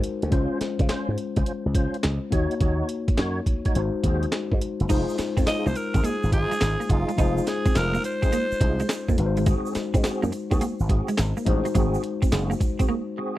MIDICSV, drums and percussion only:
0, 0, Header, 1, 2, 480
1, 0, Start_track
1, 0, Tempo, 571429
1, 272, Time_signature, 4, 2, 24, 8
1, 11239, End_track
2, 0, Start_track
2, 0, Title_t, "Drums"
2, 30, Note_on_c, 9, 42, 81
2, 114, Note_off_c, 9, 42, 0
2, 188, Note_on_c, 9, 42, 47
2, 267, Note_off_c, 9, 42, 0
2, 267, Note_on_c, 9, 42, 72
2, 269, Note_on_c, 9, 36, 106
2, 351, Note_off_c, 9, 42, 0
2, 353, Note_off_c, 9, 36, 0
2, 511, Note_on_c, 9, 42, 80
2, 513, Note_on_c, 9, 38, 69
2, 595, Note_off_c, 9, 42, 0
2, 597, Note_off_c, 9, 38, 0
2, 666, Note_on_c, 9, 36, 102
2, 668, Note_on_c, 9, 42, 36
2, 749, Note_off_c, 9, 42, 0
2, 749, Note_on_c, 9, 38, 106
2, 749, Note_on_c, 9, 42, 71
2, 750, Note_off_c, 9, 36, 0
2, 753, Note_on_c, 9, 39, 90
2, 833, Note_off_c, 9, 38, 0
2, 833, Note_off_c, 9, 42, 0
2, 837, Note_off_c, 9, 39, 0
2, 989, Note_on_c, 9, 42, 65
2, 1073, Note_off_c, 9, 42, 0
2, 1145, Note_on_c, 9, 42, 50
2, 1148, Note_on_c, 9, 36, 91
2, 1229, Note_off_c, 9, 42, 0
2, 1229, Note_on_c, 9, 42, 68
2, 1232, Note_off_c, 9, 36, 0
2, 1313, Note_off_c, 9, 42, 0
2, 1467, Note_on_c, 9, 36, 103
2, 1470, Note_on_c, 9, 42, 79
2, 1551, Note_off_c, 9, 36, 0
2, 1554, Note_off_c, 9, 42, 0
2, 1631, Note_on_c, 9, 42, 50
2, 1708, Note_on_c, 9, 38, 108
2, 1711, Note_off_c, 9, 42, 0
2, 1711, Note_on_c, 9, 42, 70
2, 1712, Note_on_c, 9, 39, 88
2, 1792, Note_off_c, 9, 38, 0
2, 1795, Note_off_c, 9, 42, 0
2, 1796, Note_off_c, 9, 39, 0
2, 1950, Note_on_c, 9, 36, 90
2, 1950, Note_on_c, 9, 42, 82
2, 2034, Note_off_c, 9, 36, 0
2, 2034, Note_off_c, 9, 42, 0
2, 2109, Note_on_c, 9, 42, 48
2, 2188, Note_off_c, 9, 42, 0
2, 2188, Note_on_c, 9, 42, 72
2, 2189, Note_on_c, 9, 36, 101
2, 2272, Note_off_c, 9, 42, 0
2, 2273, Note_off_c, 9, 36, 0
2, 2426, Note_on_c, 9, 42, 82
2, 2510, Note_off_c, 9, 42, 0
2, 2587, Note_on_c, 9, 36, 102
2, 2588, Note_on_c, 9, 42, 40
2, 2668, Note_on_c, 9, 38, 103
2, 2669, Note_off_c, 9, 42, 0
2, 2669, Note_on_c, 9, 42, 68
2, 2671, Note_off_c, 9, 36, 0
2, 2672, Note_on_c, 9, 39, 82
2, 2752, Note_off_c, 9, 38, 0
2, 2753, Note_off_c, 9, 42, 0
2, 2756, Note_off_c, 9, 39, 0
2, 2909, Note_on_c, 9, 36, 83
2, 2912, Note_on_c, 9, 42, 65
2, 2993, Note_off_c, 9, 36, 0
2, 2996, Note_off_c, 9, 42, 0
2, 3067, Note_on_c, 9, 42, 49
2, 3071, Note_on_c, 9, 36, 87
2, 3151, Note_off_c, 9, 42, 0
2, 3152, Note_on_c, 9, 42, 70
2, 3155, Note_off_c, 9, 36, 0
2, 3236, Note_off_c, 9, 42, 0
2, 3390, Note_on_c, 9, 36, 94
2, 3392, Note_on_c, 9, 42, 73
2, 3474, Note_off_c, 9, 36, 0
2, 3476, Note_off_c, 9, 42, 0
2, 3551, Note_on_c, 9, 42, 47
2, 3629, Note_on_c, 9, 38, 105
2, 3632, Note_off_c, 9, 42, 0
2, 3632, Note_on_c, 9, 42, 65
2, 3633, Note_on_c, 9, 39, 90
2, 3713, Note_off_c, 9, 38, 0
2, 3716, Note_off_c, 9, 42, 0
2, 3717, Note_off_c, 9, 39, 0
2, 3793, Note_on_c, 9, 36, 89
2, 3876, Note_on_c, 9, 42, 79
2, 3877, Note_off_c, 9, 36, 0
2, 3960, Note_off_c, 9, 42, 0
2, 4033, Note_on_c, 9, 42, 48
2, 4112, Note_on_c, 9, 82, 57
2, 4113, Note_on_c, 9, 36, 111
2, 4115, Note_off_c, 9, 42, 0
2, 4115, Note_on_c, 9, 42, 72
2, 4115, Note_on_c, 9, 49, 88
2, 4196, Note_off_c, 9, 82, 0
2, 4197, Note_off_c, 9, 36, 0
2, 4199, Note_off_c, 9, 42, 0
2, 4199, Note_off_c, 9, 49, 0
2, 4275, Note_on_c, 9, 82, 52
2, 4354, Note_on_c, 9, 42, 85
2, 4357, Note_on_c, 9, 38, 73
2, 4359, Note_off_c, 9, 82, 0
2, 4360, Note_on_c, 9, 82, 48
2, 4438, Note_off_c, 9, 42, 0
2, 4441, Note_off_c, 9, 38, 0
2, 4444, Note_off_c, 9, 82, 0
2, 4512, Note_on_c, 9, 36, 96
2, 4515, Note_on_c, 9, 42, 40
2, 4516, Note_on_c, 9, 82, 51
2, 4594, Note_off_c, 9, 42, 0
2, 4594, Note_on_c, 9, 38, 105
2, 4594, Note_on_c, 9, 42, 65
2, 4596, Note_off_c, 9, 36, 0
2, 4597, Note_off_c, 9, 82, 0
2, 4597, Note_on_c, 9, 82, 61
2, 4598, Note_on_c, 9, 39, 79
2, 4678, Note_off_c, 9, 38, 0
2, 4678, Note_off_c, 9, 42, 0
2, 4681, Note_off_c, 9, 82, 0
2, 4682, Note_off_c, 9, 39, 0
2, 4760, Note_on_c, 9, 82, 49
2, 4834, Note_on_c, 9, 42, 63
2, 4838, Note_off_c, 9, 82, 0
2, 4838, Note_on_c, 9, 82, 52
2, 4918, Note_off_c, 9, 42, 0
2, 4922, Note_off_c, 9, 82, 0
2, 4992, Note_on_c, 9, 42, 51
2, 4993, Note_on_c, 9, 36, 87
2, 4999, Note_on_c, 9, 82, 46
2, 5076, Note_off_c, 9, 42, 0
2, 5077, Note_off_c, 9, 36, 0
2, 5078, Note_off_c, 9, 82, 0
2, 5078, Note_on_c, 9, 42, 69
2, 5078, Note_on_c, 9, 82, 63
2, 5162, Note_off_c, 9, 42, 0
2, 5162, Note_off_c, 9, 82, 0
2, 5237, Note_on_c, 9, 82, 43
2, 5311, Note_on_c, 9, 36, 96
2, 5314, Note_on_c, 9, 42, 76
2, 5321, Note_off_c, 9, 82, 0
2, 5395, Note_off_c, 9, 36, 0
2, 5398, Note_off_c, 9, 42, 0
2, 5473, Note_on_c, 9, 42, 53
2, 5479, Note_on_c, 9, 82, 55
2, 5551, Note_on_c, 9, 38, 111
2, 5555, Note_off_c, 9, 42, 0
2, 5555, Note_on_c, 9, 39, 88
2, 5555, Note_on_c, 9, 42, 69
2, 5563, Note_off_c, 9, 82, 0
2, 5564, Note_on_c, 9, 82, 77
2, 5635, Note_off_c, 9, 38, 0
2, 5639, Note_off_c, 9, 39, 0
2, 5639, Note_off_c, 9, 42, 0
2, 5648, Note_off_c, 9, 82, 0
2, 5720, Note_on_c, 9, 82, 50
2, 5792, Note_on_c, 9, 36, 97
2, 5795, Note_on_c, 9, 42, 84
2, 5804, Note_off_c, 9, 82, 0
2, 5876, Note_off_c, 9, 36, 0
2, 5879, Note_off_c, 9, 42, 0
2, 5953, Note_on_c, 9, 42, 47
2, 5958, Note_on_c, 9, 82, 44
2, 6032, Note_on_c, 9, 36, 121
2, 6034, Note_off_c, 9, 42, 0
2, 6034, Note_off_c, 9, 82, 0
2, 6034, Note_on_c, 9, 42, 76
2, 6034, Note_on_c, 9, 82, 56
2, 6116, Note_off_c, 9, 36, 0
2, 6118, Note_off_c, 9, 42, 0
2, 6118, Note_off_c, 9, 82, 0
2, 6195, Note_on_c, 9, 82, 50
2, 6273, Note_off_c, 9, 82, 0
2, 6273, Note_on_c, 9, 82, 50
2, 6275, Note_on_c, 9, 42, 82
2, 6277, Note_on_c, 9, 38, 71
2, 6357, Note_off_c, 9, 82, 0
2, 6359, Note_off_c, 9, 42, 0
2, 6361, Note_off_c, 9, 38, 0
2, 6431, Note_on_c, 9, 36, 104
2, 6432, Note_on_c, 9, 82, 53
2, 6433, Note_on_c, 9, 42, 40
2, 6514, Note_off_c, 9, 42, 0
2, 6514, Note_on_c, 9, 38, 108
2, 6514, Note_on_c, 9, 42, 70
2, 6515, Note_off_c, 9, 36, 0
2, 6515, Note_off_c, 9, 82, 0
2, 6515, Note_on_c, 9, 82, 68
2, 6518, Note_on_c, 9, 39, 86
2, 6598, Note_off_c, 9, 38, 0
2, 6598, Note_off_c, 9, 42, 0
2, 6599, Note_off_c, 9, 82, 0
2, 6602, Note_off_c, 9, 39, 0
2, 6673, Note_on_c, 9, 82, 52
2, 6756, Note_on_c, 9, 42, 74
2, 6757, Note_off_c, 9, 82, 0
2, 6758, Note_on_c, 9, 82, 56
2, 6840, Note_off_c, 9, 42, 0
2, 6842, Note_off_c, 9, 82, 0
2, 6910, Note_on_c, 9, 42, 51
2, 6910, Note_on_c, 9, 82, 45
2, 6911, Note_on_c, 9, 36, 94
2, 6994, Note_off_c, 9, 42, 0
2, 6994, Note_off_c, 9, 82, 0
2, 6994, Note_on_c, 9, 82, 70
2, 6995, Note_off_c, 9, 36, 0
2, 6995, Note_on_c, 9, 42, 69
2, 7078, Note_off_c, 9, 82, 0
2, 7079, Note_off_c, 9, 42, 0
2, 7153, Note_on_c, 9, 82, 47
2, 7229, Note_on_c, 9, 36, 105
2, 7232, Note_on_c, 9, 42, 78
2, 7237, Note_off_c, 9, 82, 0
2, 7313, Note_off_c, 9, 36, 0
2, 7316, Note_off_c, 9, 42, 0
2, 7390, Note_on_c, 9, 42, 50
2, 7391, Note_on_c, 9, 82, 54
2, 7468, Note_on_c, 9, 38, 110
2, 7472, Note_off_c, 9, 42, 0
2, 7472, Note_on_c, 9, 42, 68
2, 7473, Note_on_c, 9, 39, 94
2, 7475, Note_off_c, 9, 82, 0
2, 7479, Note_on_c, 9, 82, 78
2, 7552, Note_off_c, 9, 38, 0
2, 7556, Note_off_c, 9, 42, 0
2, 7557, Note_off_c, 9, 39, 0
2, 7563, Note_off_c, 9, 82, 0
2, 7631, Note_on_c, 9, 36, 95
2, 7634, Note_on_c, 9, 82, 50
2, 7711, Note_on_c, 9, 42, 84
2, 7715, Note_off_c, 9, 36, 0
2, 7718, Note_off_c, 9, 82, 0
2, 7795, Note_off_c, 9, 42, 0
2, 7870, Note_on_c, 9, 42, 46
2, 7872, Note_on_c, 9, 82, 44
2, 7948, Note_off_c, 9, 42, 0
2, 7948, Note_on_c, 9, 42, 77
2, 7950, Note_on_c, 9, 36, 123
2, 7956, Note_off_c, 9, 82, 0
2, 7956, Note_on_c, 9, 82, 61
2, 8032, Note_off_c, 9, 42, 0
2, 8034, Note_off_c, 9, 36, 0
2, 8040, Note_off_c, 9, 82, 0
2, 8113, Note_on_c, 9, 82, 51
2, 8189, Note_on_c, 9, 42, 86
2, 8192, Note_on_c, 9, 38, 75
2, 8197, Note_off_c, 9, 82, 0
2, 8198, Note_on_c, 9, 82, 52
2, 8273, Note_off_c, 9, 42, 0
2, 8276, Note_off_c, 9, 38, 0
2, 8282, Note_off_c, 9, 82, 0
2, 8350, Note_on_c, 9, 36, 98
2, 8354, Note_on_c, 9, 42, 42
2, 8354, Note_on_c, 9, 82, 55
2, 8433, Note_off_c, 9, 42, 0
2, 8433, Note_on_c, 9, 38, 108
2, 8433, Note_on_c, 9, 42, 71
2, 8434, Note_off_c, 9, 36, 0
2, 8436, Note_off_c, 9, 82, 0
2, 8436, Note_on_c, 9, 82, 62
2, 8437, Note_on_c, 9, 39, 89
2, 8517, Note_off_c, 9, 38, 0
2, 8517, Note_off_c, 9, 42, 0
2, 8520, Note_off_c, 9, 82, 0
2, 8521, Note_off_c, 9, 39, 0
2, 8594, Note_on_c, 9, 82, 49
2, 8673, Note_off_c, 9, 82, 0
2, 8673, Note_on_c, 9, 42, 70
2, 8673, Note_on_c, 9, 82, 52
2, 8757, Note_off_c, 9, 42, 0
2, 8757, Note_off_c, 9, 82, 0
2, 8831, Note_on_c, 9, 42, 53
2, 8832, Note_on_c, 9, 36, 89
2, 8835, Note_on_c, 9, 82, 48
2, 8913, Note_off_c, 9, 42, 0
2, 8913, Note_on_c, 9, 42, 71
2, 8916, Note_off_c, 9, 36, 0
2, 8918, Note_off_c, 9, 82, 0
2, 8918, Note_on_c, 9, 82, 69
2, 8997, Note_off_c, 9, 42, 0
2, 9002, Note_off_c, 9, 82, 0
2, 9069, Note_on_c, 9, 82, 49
2, 9150, Note_on_c, 9, 36, 108
2, 9152, Note_on_c, 9, 42, 77
2, 9153, Note_off_c, 9, 82, 0
2, 9234, Note_off_c, 9, 36, 0
2, 9236, Note_off_c, 9, 42, 0
2, 9310, Note_on_c, 9, 42, 54
2, 9311, Note_on_c, 9, 82, 55
2, 9388, Note_on_c, 9, 38, 123
2, 9391, Note_off_c, 9, 42, 0
2, 9391, Note_on_c, 9, 42, 68
2, 9392, Note_on_c, 9, 39, 95
2, 9394, Note_off_c, 9, 82, 0
2, 9394, Note_on_c, 9, 82, 77
2, 9472, Note_off_c, 9, 38, 0
2, 9475, Note_off_c, 9, 42, 0
2, 9476, Note_off_c, 9, 39, 0
2, 9478, Note_off_c, 9, 82, 0
2, 9553, Note_on_c, 9, 82, 54
2, 9630, Note_on_c, 9, 36, 95
2, 9630, Note_on_c, 9, 42, 77
2, 9637, Note_off_c, 9, 82, 0
2, 9714, Note_off_c, 9, 36, 0
2, 9714, Note_off_c, 9, 42, 0
2, 9789, Note_on_c, 9, 42, 49
2, 9790, Note_on_c, 9, 82, 44
2, 9871, Note_off_c, 9, 42, 0
2, 9871, Note_on_c, 9, 36, 113
2, 9871, Note_on_c, 9, 42, 76
2, 9872, Note_off_c, 9, 82, 0
2, 9872, Note_on_c, 9, 82, 62
2, 9955, Note_off_c, 9, 36, 0
2, 9955, Note_off_c, 9, 42, 0
2, 9956, Note_off_c, 9, 82, 0
2, 10032, Note_on_c, 9, 82, 53
2, 10110, Note_on_c, 9, 42, 80
2, 10116, Note_off_c, 9, 82, 0
2, 10194, Note_off_c, 9, 42, 0
2, 10269, Note_on_c, 9, 36, 108
2, 10271, Note_on_c, 9, 42, 44
2, 10272, Note_on_c, 9, 82, 56
2, 10350, Note_off_c, 9, 82, 0
2, 10350, Note_on_c, 9, 82, 64
2, 10351, Note_off_c, 9, 42, 0
2, 10351, Note_on_c, 9, 38, 118
2, 10351, Note_on_c, 9, 42, 78
2, 10353, Note_off_c, 9, 36, 0
2, 10355, Note_on_c, 9, 39, 95
2, 10434, Note_off_c, 9, 82, 0
2, 10435, Note_off_c, 9, 38, 0
2, 10435, Note_off_c, 9, 42, 0
2, 10439, Note_off_c, 9, 39, 0
2, 10511, Note_on_c, 9, 82, 49
2, 10588, Note_on_c, 9, 36, 90
2, 10592, Note_on_c, 9, 42, 71
2, 10594, Note_off_c, 9, 82, 0
2, 10594, Note_on_c, 9, 82, 52
2, 10672, Note_off_c, 9, 36, 0
2, 10676, Note_off_c, 9, 42, 0
2, 10678, Note_off_c, 9, 82, 0
2, 10747, Note_on_c, 9, 42, 54
2, 10749, Note_on_c, 9, 36, 98
2, 10753, Note_on_c, 9, 82, 48
2, 10831, Note_off_c, 9, 42, 0
2, 10833, Note_off_c, 9, 36, 0
2, 10837, Note_off_c, 9, 82, 0
2, 11239, End_track
0, 0, End_of_file